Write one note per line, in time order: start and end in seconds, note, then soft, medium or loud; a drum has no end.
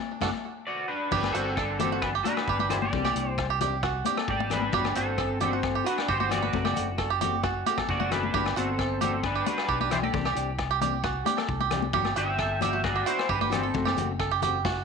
0.20 0.30 F#1 loud
0.20 0.28 C4 medium
0.20 0.29 D4 medium
0.20 0.29 F#4 medium
0.20 0.29 A4 medium
0.20 kick medium
0.20 snare medium
0.20 high conga medium
0.20 low agogo medium
0.67 0.88 F#4 medium
0.67 0.88 D5 loud
0.88 1.31 D4 medium
0.88 1.35 B4 medium
1.11 1.33 G1 medium
1.11 1.25 F#3 medium
1.11 1.25 B3 medium
1.11 1.26 D4 medium
1.11 1.26 F#4 medium
1.11 1.33 G4 medium
1.11 kick medium
1.11 crash medium
1.11 low conga medium
1.23 cross-stick medium
1.23 high conga medium
1.23 low agogo medium
1.33 2.21 G1 medium
1.33 1.49 B3 soft
1.33 1.56 C4 medium
1.33 1.49 D4 soft
1.33 1.48 F#4 soft
1.33 1.56 F#4 medium
1.33 1.55 A4 medium
1.33 closed hi-hat soft
1.56 1.79 D4 medium
1.56 1.78 A4 medium
1.56 1.79 A4 medium
1.56 kick medium
1.56 cross-stick medium
1.56 low agogo medium
1.79 1.95 B3 soft
1.79 2.01 C4 medium
1.79 1.94 F#4 medium
1.79 1.91 G4 medium
1.79 2.03 A4 medium
1.79 muted nylon-string guitar stroke soft
1.79 closed hi-hat soft
1.79 high conga medium
1.79 low conga medium
1.92 2.13 F#4 medium
2.02 2.11 D4 medium
2.02 2.08 B4 medium
2.02 kick medium
2.02 cross-stick medium
2.02 low agogo medium
2.15 2.25 G4 medium
2.24 2.39 B3 soft
2.24 2.39 D4 soft
2.24 2.68 D4 medium
2.24 2.38 F#4 medium
2.24 2.47 F#4 medium
2.24 2.70 B4 loud
2.24 closed hi-hat soft
2.24 high conga medium
2.37 cross-stick medium
2.37 low agogo medium
2.48 2.90 G1 medium
2.48 2.59 G4 medium
2.48 kick medium
2.59 2.81 G4 medium
2.59 high conga medium
2.70 2.85 B3 soft
2.70 2.84 D4 soft
2.70 2.77 E4 medium
2.70 2.84 F#4 medium
2.70 2.75 C5 medium
2.70 cross-stick medium
2.70 closed hi-hat soft
2.70 low conga medium
2.70 low agogo medium
2.82 3.46 G4 medium
2.82 3.30 D5 medium
2.82 high conga medium
2.93 3.14 C2 loud
2.93 3.06 E3 medium
2.93 3.07 C4 medium
2.93 3.07 D4 medium
2.93 3.07 G4 medium
2.93 kick loud
2.93 low conga medium
3.05 3.26 G4 medium
3.05 cross-stick medium
3.05 high conga medium
3.05 low agogo medium
3.15 4.02 C2 medium
3.15 3.30 C4 soft
3.15 3.30 D4 soft
3.15 3.29 G4 soft
3.15 closed hi-hat medium
3.30 3.45 C5 medium
3.38 muted five-string banjo stroke medium
3.38 kick medium
3.38 cross-stick medium
3.38 low agogo medium
3.50 3.60 G4 medium
3.60 3.75 C4 medium
3.60 3.75 D4 medium
3.60 3.74 G4 medium
3.60 3.82 G4 medium
3.60 closed hi-hat medium
3.60 high conga medium
3.60 low conga medium
3.83 4.04 F#4 medium
3.83 kick medium
3.83 cross-stick medium
3.83 low agogo medium
4.05 4.20 C4 soft
4.05 4.20 D4 medium
4.05 4.19 G4 medium
4.05 4.17 G4 medium
4.05 closed hi-hat medium
4.05 high conga medium
4.17 4.39 A4 medium
4.17 cross-stick medium
4.17 low agogo medium
4.28 4.70 G#1 medium
4.28 4.50 G4 medium
4.28 4.52 D5 loud
4.28 kick medium
4.40 muted five-string banjo stroke medium
4.40 high conga medium
4.50 4.65 C4 soft
4.50 4.93 D4 medium
4.50 4.65 D4 soft
4.50 4.64 G4 medium
4.50 4.98 B4 medium
4.50 cross-stick medium
4.50 closed hi-hat medium
4.50 low conga medium
4.50 low agogo medium
4.62 high conga medium
4.73 4.94 G1 loud
4.73 4.87 F#3 medium
4.73 4.87 B3 medium
4.73 4.87 D4 medium
4.73 4.87 F#4 medium
4.73 4.95 G4 medium
4.73 kick loud
4.73 low conga medium
4.85 cross-stick medium
4.85 high conga medium
4.85 low agogo medium
4.95 5.82 G1 medium
4.95 5.11 B3 soft
4.95 5.37 C4 medium
4.95 5.10 D4 soft
4.95 5.17 F#4 medium
4.95 5.38 A4 medium
4.95 muted nylon-string guitar stroke medium
4.95 closed hi-hat medium
5.18 5.40 A4 medium
5.18 kick medium
5.18 cross-stick medium
5.18 low agogo medium
5.40 5.55 B3 medium
5.40 5.83 C4 medium
5.40 5.55 D4 soft
5.40 5.54 F#4 medium
5.40 5.52 G4 medium
5.40 5.84 A4 medium
5.40 closed hi-hat soft
5.40 high conga medium
5.40 low conga medium
5.53 5.74 F#4 medium
5.63 kick loud
5.63 cross-stick medium
5.63 low agogo medium
5.75 5.85 G4 medium
5.84 5.99 B3 soft
5.84 5.99 D4 soft
5.84 6.07 D4 medium
5.84 5.99 F#4 medium
5.84 6.07 F#4 medium
5.84 6.07 B4 medium
5.84 closed hi-hat soft
5.98 cross-stick medium
5.98 low agogo medium
6.08 6.51 G1 medium
6.08 6.30 F#4 medium
6.08 6.19 G4 medium
6.08 6.32 C5 medium
6.08 kick medium
6.20 6.41 G4 medium
6.20 high conga medium
6.29 6.45 B3 soft
6.29 6.44 D4 medium
6.29 6.44 F#4 medium
6.29 7.62 F#4 medium
6.29 7.62 D5 medium
6.29 cross-stick medium
6.29 closed hi-hat soft
6.29 low conga medium
6.29 low agogo medium
6.43 6.64 B4 medium
6.43 high conga medium
6.53 6.74 F#1 loud
6.53 6.67 F#3 medium
6.53 6.67 A3 medium
6.53 6.67 C4 medium
6.53 6.67 F#4 medium
6.53 kick medium
6.53 low conga medium
6.65 6.86 G4 medium
6.65 cross-stick medium
6.65 high conga medium
6.65 low agogo medium
6.76 7.62 F#1 medium
6.76 6.91 A3 soft
6.76 6.90 C4 soft
6.76 6.90 F#4 medium
6.76 closed hi-hat medium
6.76 low conga medium
6.98 7.09 A4 medium
6.98 kick medium
6.98 cross-stick medium
6.98 low agogo medium
7.10 7.20 G4 medium
7.21 7.36 A3 medium
7.21 7.36 C4 medium
7.21 7.35 F#4 medium
7.21 7.42 G4 medium
7.21 closed hi-hat soft
7.21 high conga medium
7.21 low conga medium
7.43 7.65 F#4 medium
7.43 kick medium
7.43 cross-stick medium
7.43 low agogo medium
7.66 7.81 A3 soft
7.66 7.81 C4 medium
7.66 7.80 F#4 medium
7.66 7.77 G4 medium
7.66 closed hi-hat medium
7.66 high conga medium
7.78 7.99 A4 medium
7.78 kick medium
7.78 cross-stick medium
7.78 low agogo medium
7.89 8.31 F#1 medium
7.89 8.10 F#4 medium
7.89 8.11 D5 loud
7.89 kick medium
8.00 8.21 F#4 medium
8.00 high conga medium
8.11 8.26 A3 soft
8.11 8.26 C4 medium
8.11 8.53 D4 medium
8.11 8.25 F#4 medium
8.11 8.53 B4 loud
8.11 cross-stick medium
8.11 closed hi-hat medium
8.11 low conga medium
8.11 low agogo medium
8.23 high conga medium
8.34 8.55 G1 medium
8.34 8.48 F#3 medium
8.34 8.48 B3 medium
8.34 8.48 D4 medium
8.34 8.48 F#4 medium
8.34 8.55 G4 medium
8.34 kick loud
8.34 low conga medium
8.46 cross-stick medium
8.46 low agogo medium
8.56 9.42 G1 medium
8.56 8.71 B3 soft
8.56 8.99 C4 medium
8.56 8.71 D4 soft
8.56 8.77 F#4 medium
8.56 8.70 F#4 medium
8.56 8.99 A4 medium
8.56 closed hi-hat medium
8.79 9.00 A4 medium
8.79 kick medium
8.79 cross-stick medium
8.79 low agogo medium
9.01 9.23 C4 medium
9.01 9.16 D4 medium
9.01 9.15 F#4 medium
9.01 9.12 G4 medium
9.01 9.23 A4 medium
9.01 muted nylon-string guitar stroke medium
9.01 closed hi-hat soft
9.01 high conga medium
9.01 low conga medium
9.23 9.45 D4 medium
9.23 9.45 B4 medium
9.23 kick medium
9.23 cross-stick medium
9.23 low agogo medium
9.35 9.46 G4 medium
9.46 9.61 B3 soft
9.46 9.60 D4 medium
9.46 9.89 D4 medium
9.46 9.68 F#4 medium
9.46 9.89 B4 medium
9.46 closed hi-hat soft
9.46 high conga medium
9.58 cross-stick medium
9.58 low agogo medium
9.69 10.11 B1 loud
9.69 9.80 G4 medium
9.69 kick medium
9.80 10.02 G4 medium
9.80 high conga medium
9.90 10.05 B3 soft
9.90 10.05 D4 soft
9.90 9.97 E4 medium
9.90 10.04 F#4 medium
9.90 9.97 C5 medium
9.90 cross-stick medium
9.90 closed hi-hat medium
9.90 low conga medium
9.90 low agogo medium
10.03 10.67 G4 medium
10.03 10.25 A4 medium
10.03 10.71 D5 medium
10.03 high conga medium
10.13 10.35 C2 medium
10.13 10.27 E3 medium
10.13 10.27 C4 medium
10.13 10.28 D4 medium
10.13 10.28 G4 medium
10.13 kick loud
10.13 low conga medium
10.25 10.47 G4 medium
10.25 cross-stick medium
10.25 low agogo medium
10.35 11.22 C2 medium
10.35 10.51 C4 soft
10.35 10.50 D4 soft
10.35 10.50 G4 medium
10.35 closed hi-hat soft
10.59 muted five-string banjo stroke medium
10.59 kick medium
10.59 cross-stick medium
10.59 low agogo medium
10.71 10.80 G4 medium
10.81 10.96 C4 medium
10.81 10.95 D4 medium
10.81 11.03 G4 medium
10.81 closed hi-hat soft
10.81 high conga medium
10.81 low conga medium
11.04 11.25 F#4 medium
11.04 kick medium
11.04 cross-stick medium
11.04 low agogo medium
11.25 11.41 C4 soft
11.25 11.40 D4 soft
11.25 11.40 G4 medium
11.25 11.37 G4 medium
11.25 closed hi-hat soft
11.25 high conga medium
11.37 11.59 A4 medium
11.37 cross-stick medium
11.37 low agogo medium
11.49 11.91 C2 loud
11.49 kick medium
11.60 11.82 G4 medium
11.60 high conga medium
11.71 11.86 C4 medium
11.71 11.86 D4 medium
11.71 11.85 G4 medium
11.71 cross-stick medium
11.71 closed hi-hat medium
11.71 low conga medium
11.71 low agogo medium
11.82 high conga medium
11.93 12.15 G1 loud
11.93 12.08 F#3 medium
11.93 12.08 B3 loud
11.93 12.08 D4 medium
11.93 12.08 F#4 medium
11.93 12.15 G4 medium
11.93 kick loud
11.93 low conga medium
12.05 cross-stick medium
12.05 high conga medium
12.05 low agogo medium
12.16 13.03 G1 medium
12.16 12.31 D4 soft
12.16 12.38 F#4 medium
12.16 12.31 F#4 medium
12.16 12.59 G4 medium
12.16 12.61 E5 loud
12.16 closed hi-hat medium
12.39 12.61 A4 medium
12.39 kick medium
12.39 cross-stick medium
12.39 low agogo medium
12.61 12.76 B3 soft
12.61 12.76 D4 medium
12.61 12.75 F#4 medium
12.61 12.83 G4 medium
12.61 12.73 G4 medium
12.61 12.84 E5 medium
12.61 closed hi-hat soft
12.61 high conga medium
12.61 low conga medium
12.73 12.95 F#4 medium
12.84 13.05 F#4 medium
12.84 13.05 D5 loud
12.84 kick medium
12.84 cross-stick medium
12.84 low agogo medium
12.96 13.06 G4 medium
13.06 13.22 B3 soft
13.06 13.21 D4 soft
13.06 13.28 E4 medium
13.06 13.28 F#4 medium
13.06 13.21 F#4 soft
13.06 13.30 C5 loud
13.06 closed hi-hat soft
13.19 cross-stick medium
13.19 low agogo medium
13.29 13.72 G1 medium
13.29 13.51 D4 medium
13.29 13.40 G4 medium
13.29 13.51 B4 medium
13.29 kick medium
13.41 13.63 G4 medium
13.41 high conga medium
13.50 13.66 B3 soft
13.50 13.94 C4 medium
13.50 13.66 D4 soft
13.50 13.65 F#4 medium
13.50 13.94 A4 medium
13.50 cross-stick medium
13.50 closed hi-hat soft
13.50 low conga medium
13.50 low agogo medium
13.63 13.85 A4 medium
13.74 13.96 F#1 loud
13.74 13.88 F#3 medium
13.74 13.89 A3 medium
13.74 13.89 C4 medium
13.74 13.89 F#4 medium
13.74 kick medium
13.74 low conga medium
13.85 14.07 G4 medium
13.85 cross-stick medium
13.85 high conga medium
13.85 low agogo medium
13.97 14.84 F#1 medium
13.97 14.12 A3 soft
13.97 14.12 C4 soft
13.97 14.11 F#4 medium
13.97 closed hi-hat soft
13.97 low conga medium
14.19 14.31 A4 medium
14.19 kick medium
14.19 cross-stick medium
14.19 low agogo medium
14.31 14.41 G4 medium
14.42 14.57 A3 medium
14.42 14.57 C4 medium
14.42 14.56 F#4 medium
14.42 14.64 G4 medium
14.42 closed hi-hat soft
14.42 low conga medium
14.65 14.84 F#4 medium
14.65 kick medium
14.65 snare medium
14.65 low agogo medium